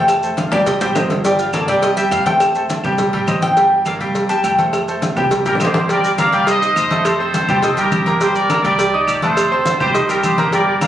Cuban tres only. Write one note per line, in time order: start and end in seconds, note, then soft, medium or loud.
0.08 0.35 A5 loud
0.38 0.52 F5 medium
0.52 0.66 D5 loud
0.67 0.81 D#5 loud
0.81 0.90 C5 loud
1.25 1.39 D5 medium
1.39 1.53 F4 medium
1.54 1.68 A4 medium
1.68 1.82 D5 medium
1.83 1.97 D#5 medium
1.97 2.11 E5 loud
2.12 2.26 F5 medium
2.26 2.40 G5 loud
2.40 2.95 A5 loud
3.42 3.83 G5 loud
3.86 4.27 F5 medium
4.29 4.43 A5 loud
4.44 4.53 G5 medium